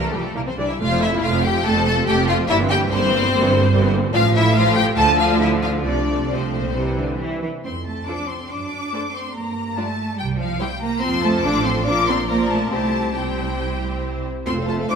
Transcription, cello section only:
Already playing: E3
0.13 F3
0.35 G3
0.58 G3
0.80 F2
1.23 F2
1.66 F2
2.08 F2
2.50 G2
2.91 G2
3.33 G2
3.73 G2
4.15 A2
4.98 D3
5.86 C3
6.31 C3
6.54 A#2
6.76 C3
6.97 D3
7.19 E3
7.42 E3
7.64 C4
7.86 A3
8.07 D4
8.29 C4
8.50 D4
9.14 C4
9.35 A#3
9.78 A3
10.19 G3
10.40 F3
10.61 G3
10.82 A#3
11.02 C4
11.23 A3
11.44 D4
11.65 C4
11.86 D4
12.08 C4
12.29 A#3
12.50 A3
12.72 A3
13.16 G3
14.47 C4
14.68 A3
14.90 D4

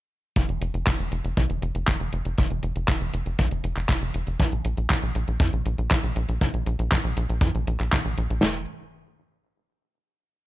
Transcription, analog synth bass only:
0.36 F1
0.49 F1
0.61 F1
0.74 F1
0.87 F1
0.99 F1
1.12 F1
1.25 F1
1.37 C2
1.50 F1
1.62 F1
1.75 F1
1.88 F1
2.00 F1
2.13 F1
2.25 F1
2.38 F1
2.51 F1
2.63 F1
2.76 F1
2.88 F1
3.01 F1
3.14 F1
3.26 F1
3.39 C2
3.51 F1
3.64 F1
3.77 F1
3.89 F1
4.02 F1
4.15 F1
4.27 F1
4.40 A#1
4.52 A#1
4.65 A#1
4.77 A#1
4.90 A#1
5.03 A#1
5.15 A#1
5.28 A#1
5.40 F2
5.53 A#1
5.66 A#1
5.78 A#1
5.91 A#1
6.04 A#1
6.16 A#1
6.29 A#1
6.41 A#1
6.54 A#1
6.66 A#1
6.79 A#1
6.92 A#1
7.04 A#1
7.17 A#1
7.29 A#1
7.41 F2
7.55 A#1
7.67 A#1
7.80 A#1
7.93 A#1
8.05 A#1
8.18 A#1
8.30 A#1
8.43 F1

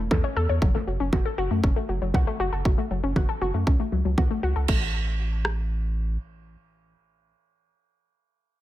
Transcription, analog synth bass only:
0.11 E2
0.36 E2
0.49 E2
0.62 F#1
0.87 F#1
1.00 F#1
1.13 F#1
1.38 F#1
1.51 F#2
1.64 F#1
1.89 F#1
2.02 F#1
2.14 C#2
2.40 F#1
2.52 F#1
2.65 F#1
2.91 F#1
3.03 F#1
3.16 F#1
3.41 F#1
3.54 F#2
3.67 C#2
3.92 C#2
4.05 C#2
4.18 C#2
4.43 C#2
4.56 C#2
4.69 A1

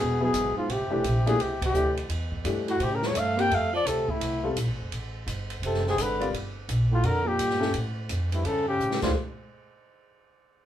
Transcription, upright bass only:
0.00 E1
0.33 G#1
0.56 muted upright bass stroke
0.69 A1
0.79 G1
0.91 E1
1.04 A#1
1.39 C2
1.73 D2
2.09 E2
2.44 G2
2.80 A2
3.15 G2
3.50 F2
3.85 D2
4.08 muted upright bass stroke
4.20 C2
4.56 A#1
4.67 A1
4.79 F1
4.91 A1
5.27 G1
5.62 F#1
5.98 G#1
6.33 G1
6.68 A#1
7.03 F2
7.39 G2
7.74 A2
8.09 F2
8.44 G2
8.79 A2
9.02 D2

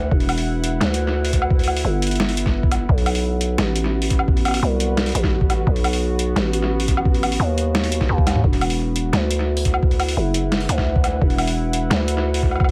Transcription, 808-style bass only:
0.11 E1
0.81 D2
1.85 G1
2.89 B1
3.58 A1
4.63 C2
5.15 A1
5.67 B1
6.36 A1
7.40 D#2
8.09 D#2
8.44 E1
9.13 D2
10.17 F#1
10.69 D2
11.22 E1
11.90 D2

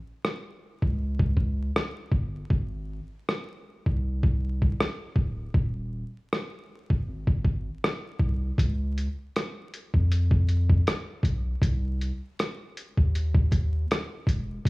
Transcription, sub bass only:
0.83 C#2
2.12 G1
2.51 G#1
3.87 C2
5.16 D1
5.55 D#1
6.91 F#1
7.08 G#1
8.20 C2
8.59 C#2
9.95 F2
11.24 B1
11.62 C2
12.98 D#2
14.28 E1
14.66 F1

